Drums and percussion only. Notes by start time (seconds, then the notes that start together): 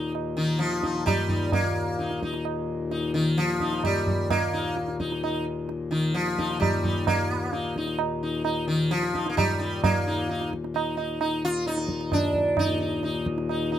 0.15 tabla na
0.60 tabla te
0.73 tabla te
0.84 tabla ke
0.96 tabla te
1.07 tabla na, tabla ge
1.29 tabla ge
1.52 tabla na, tabla ge
1.99 tabla te
2.11 tabla te
2.23 tabla ke
2.34 tabla te
2.45 tabla na
2.91 tabla te
3.16 tabla te
3.38 tabla te
3.49 tabla te
3.60 tabla ke
3.73 tabla te
3.84 tabla na, tabla ge
4.07 tabla ge
4.30 tabla na, tabla ge
4.77 tabla te
4.88 tabla te
5.00 tabla ke
5.12 tabla te
5.24 tabla na
5.69 tabla te
5.92 tabla te
6.16 tabla te
6.28 tabla te
6.39 tabla ke
6.51 tabla te
6.62 tabla na, tabla ge
6.84 tabla ge
7.07 tabla na, tabla ge
7.53 tabla te
7.65 tabla te
7.76 tabla ke
7.87 tabla te
7.99 tabla na
8.45 tabla na
8.91 tabla te
9.03 tabla te
9.15 tabla ke
9.26 tabla te
9.38 tabla na, tabla ge
9.61 tabla te
9.84 tabla na, tabla ge
10.29 tabla te
10.41 tabla te
10.53 tabla ke
10.64 tabla te
10.76 tabla na
10.98 tabla na
11.21 tabla na
11.66 tabla te
11.78 tabla te
11.89 tabla ke
12.01 tabla te
12.12 tabla na, tabla ge
12.34 tabla ge
12.57 tabla na, tabla ge
13.03 tabla te
13.15 tabla te
13.26 tabla ke
13.38 tabla te
13.49 tabla na
13.72 tabla na